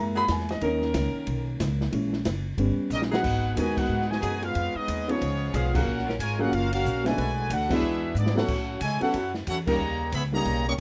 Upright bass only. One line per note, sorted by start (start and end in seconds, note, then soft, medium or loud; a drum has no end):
0.00 0.27 F#2 medium
0.28 0.60 E2 loud
0.61 0.93 D#2 medium
0.94 1.13 C#2 medium
1.14 muted upright bass stroke soft
1.27 1.59 B1 medium
1.60 1.92 C#2 loud
1.93 2.24 A#1 medium
2.25 2.57 F#1 medium
2.58 2.77 G1 medium
2.77 muted upright bass stroke soft
2.90 3.22 A#1 loud
3.23 3.55 G#1 medium
3.57 3.88 D#2 loud
3.89 4.21 G#2 medium
4.22 4.54 F#2 loud
4.55 4.74 F2 medium
4.75 muted upright bass stroke soft
4.88 5.20 D#2 loud
5.21 5.53 C#2 medium
5.54 5.85 B1 loud
5.86 6.18 A#1 medium
6.19 6.51 G#1 medium
6.52 6.84 F#1 medium
6.85 7.17 A#1 loud
7.18 7.49 B1 medium
7.50 7.81 D2 loud
7.82 8.14 E2 medium
8.15 8.47 G#2 loud
8.48 8.80 A2 medium
8.81 9.00 C#3 medium
9.02 muted upright bass stroke soft
9.14 9.46 F#2 medium
9.47 9.78 E2 loud
9.79 10.11 D#2 loud
10.12 10.45 C#2 medium
10.45 10.78 B1 medium